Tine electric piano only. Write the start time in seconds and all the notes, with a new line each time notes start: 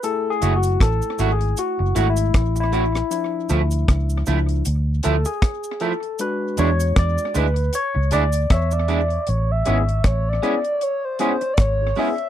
0.03 A3 E4 G#4 A4
0.30 G#4
0.56 F#4
0.82 A4
1.32 G#4
1.59 F#4
1.95 G#3 A3 E4
2.10 E4
2.60 E4
3.10 F3 D4 E4
4.27 F3 D4 E4
5.04 A4
5.26 G#4
5.81 A4
6.19 G#3 D4 F#4 B4
6.59 C#5
6.99 D5
7.37 B4
7.75 C#5
8.13 D5
8.51 E5
9.67 B3 C#4 E4 G#4
10.43 B3 C#4 E4 G#4
11.20 B3 C#4 E4 G#4
11.82 E4 G#4
11.98 B3 C#4 E4 G#4